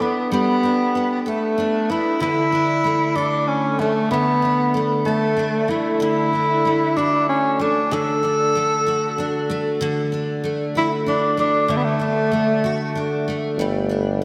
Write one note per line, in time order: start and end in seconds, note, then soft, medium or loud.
0.00 0.30 G3 medium
0.00 0.94 B3 soft
0.00 0.32 B3 medium
0.00 0.63 D4 soft
0.00 1.25 A4 soft
0.32 2.21 G3 medium
0.32 1.21 B3 medium
0.63 1.57 D4 soft
0.95 1.88 B3 soft
1.21 1.29 B3 soft
1.26 1.92 A3 medium
1.26 3.15 A4 soft
1.58 2.52 D4 soft
1.90 2.27 B3 medium
1.90 2.21 E4 medium
2.20 4.10 D3 medium
2.20 3.18 E4 medium
2.52 4.42 D4 soft
2.84 3.78 A3 soft
3.15 3.49 D4 medium
3.15 5.05 A4 soft
3.47 3.81 C#4 medium
3.79 4.74 A3 soft
3.79 4.10 A3 medium
4.11 6.00 D3 medium
4.11 4.74 B3 medium
4.42 5.36 D4 soft
4.74 5.68 A3 soft
5.05 5.71 A3 medium
5.05 6.96 A4 soft
5.37 6.33 D4 soft
5.68 6.65 A3 soft
5.68 6.01 E4 medium
6.00 7.91 D3 medium
6.00 6.99 E4 medium
6.33 8.22 D4 soft
6.65 7.59 A3 soft
6.97 7.28 D4 medium
6.97 8.85 F#4 soft
7.29 7.62 C#4 medium
7.59 8.55 A3 soft
7.59 7.94 D4 medium
7.91 9.80 D3 medium
7.91 9.50 A4 medium
8.23 9.18 D4 soft
8.55 9.49 A3 soft
8.86 10.74 F#4 medium
9.18 10.12 D4 soft
9.50 10.43 A3 medium
9.81 11.68 D3 medium
10.12 11.06 D4 soft
10.44 11.37 A3 soft
10.75 10.91 E4 medium
10.75 12.63 F#4 soft
11.06 11.99 D4 soft
11.06 11.36 D4 medium
11.37 12.31 A3 soft
11.37 11.72 D4 medium
11.68 14.24 D3 medium
11.68 11.78 A3 medium
11.76 11.85 B3 medium
11.84 13.28 A3 medium
11.99 12.95 D4 soft
12.32 13.27 A3 soft
12.64 13.65 F#4 soft
12.95 13.89 D4 soft
13.28 14.21 A3 soft
13.58 14.24 G1 medium
13.58 14.24 G3 medium
13.89 14.24 D4 soft